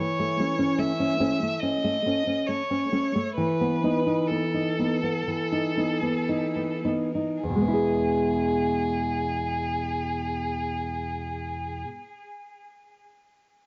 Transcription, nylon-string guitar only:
0.00 1.58 E3 soft
0.19 0.39 A3 soft
0.40 0.57 A3 soft
0.40 0.58 C#4 soft
0.59 0.91 C#4 soft
0.78 1.11 A3 soft
1.00 1.19 C#4 soft
1.20 1.38 A3 soft
1.20 1.38 C#4 soft
1.42 1.75 A3 soft
1.63 1.96 C#4 soft
1.84 2.05 A3 soft
2.06 2.24 A3 soft
2.06 2.25 C#4 soft
2.27 2.61 C#4 soft
2.48 2.83 A3 soft
2.71 2.92 C#4 soft
2.92 3.12 A3 soft
2.92 3.12 C#4 soft
3.16 3.37 A3 soft
3.38 5.22 E3 soft
3.61 3.82 B3 soft
3.83 4.03 B3 soft
3.83 4.04 D#4 soft
4.07 4.43 D#4 soft
4.31 4.68 B3 soft
4.54 4.78 D#4 soft
4.79 5.00 B3 soft
4.79 5.00 D#4 soft
5.03 5.42 B3 soft
5.28 7.39 E3 soft
5.52 5.76 D#4 soft
5.77 6.00 B3 soft
5.77 6.00 D#4 soft
6.02 6.45 B3 soft
6.29 6.74 D#4 soft
6.56 6.84 B3 soft
6.85 7.11 B3 soft
6.85 7.11 D#4 soft
7.15 7.42 D#4 soft
7.43 11.83 E2 soft
7.49 11.89 B2 soft
7.55 11.95 G#3 soft
7.61 12.01 B3 soft
7.68 12.08 E4 soft
7.74 12.13 G#4 soft

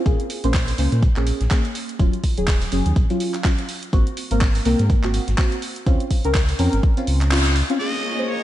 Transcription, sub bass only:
0.06 0.15 A#1 medium
0.44 0.73 A#1 medium
0.78 0.88 C#2 medium
0.92 1.08 A#2 loud
1.16 1.32 A#1 loud
1.41 1.48 A#1 medium
1.99 2.09 D#1 medium
2.37 2.67 D#1 medium
2.72 2.81 F#1 medium
2.86 2.93 D#2 loud
2.96 3.06 A#1 medium
3.93 4.03 G#1 loud
4.31 4.60 G#1 medium
4.65 4.75 C2 medium
4.79 4.95 G#2 loud
5.04 5.19 G#1 loud
5.28 5.35 G#1 medium
5.86 5.96 C#2 loud
6.25 6.54 C#2 medium
6.59 6.69 F2 medium
6.73 6.80 G#1 loud
7.07 7.63 C#2 medium

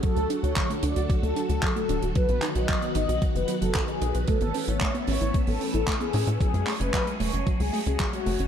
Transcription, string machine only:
0.00 2.14 D3 medium
0.00 4.24 F#3 medium
0.00 2.12 A3 medium
0.00 4.24 F#4 medium
0.00 2.14 A4 medium
2.16 4.26 D#3 medium
2.16 6.37 B3 medium
2.16 4.26 B4 medium
4.28 6.38 E3 medium
4.28 8.48 A3 medium
4.28 8.48 C#4 medium
4.28 6.38 A4 medium
6.40 8.48 F#3 medium
6.40 8.48 G#3 medium
6.40 8.48 G#4 medium

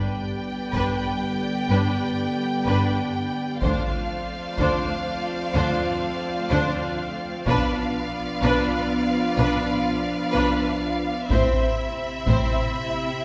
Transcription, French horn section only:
0.00 3.59 D3 soft
0.00 3.59 B3 soft
3.61 7.42 F3 medium
3.61 7.42 C4 soft
7.48 11.13 F3 medium
7.48 11.13 D4 medium
11.30 13.25 C3 medium
11.30 13.25 C4 medium

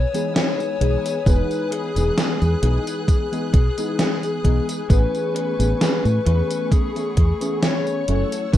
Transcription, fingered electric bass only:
0.81 0.95 B1 medium
1.26 1.41 E1 medium
1.96 2.09 E1 medium
2.42 2.54 E2 medium
2.63 2.77 B1 loud
3.54 3.68 B1 loud
4.44 4.59 B1 medium
4.90 5.04 A1 medium
5.59 5.72 A1 medium
6.05 6.18 A2 medium
6.26 6.41 E2 loud
7.17 7.32 E2 loud
8.08 8.23 F#1 medium
8.54 8.57 F#1 medium

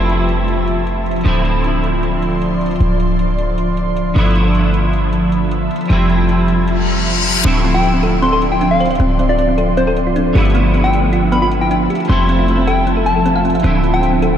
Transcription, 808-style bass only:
0.00 1.24 F1 medium
1.26 2.79 D1 medium
2.80 4.14 D1 medium
4.16 5.69 G1 medium
5.90 7.43 F1 medium
7.45 8.98 D1 medium
9.00 10.33 D1 medium
10.35 11.88 G1 medium
12.09 13.62 F1 medium
13.64 14.38 D1 medium

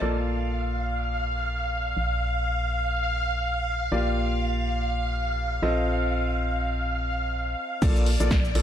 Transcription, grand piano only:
0.02 3.89 A#3 medium
0.02 3.89 F4 medium
0.02 3.89 A4 medium
0.02 3.89 D5 medium
3.92 5.60 A#3 medium
3.92 5.60 F4 medium
3.92 5.60 G4 medium
3.92 5.60 D5 medium
5.63 7.80 C4 medium
5.63 7.79 F4 medium
5.63 7.80 A4 medium
5.63 7.80 D#5 medium
7.82 8.08 A#3 medium
7.82 8.08 F4 medium
7.82 8.08 A4 medium
7.82 8.08 D5 medium
8.20 8.35 A#3 medium
8.20 8.35 F4 medium
8.20 8.35 A4 medium
8.20 8.35 D5 medium
8.55 8.62 A#3 medium
8.55 8.62 F4 medium
8.55 8.62 A4 medium
8.55 8.62 D5 medium

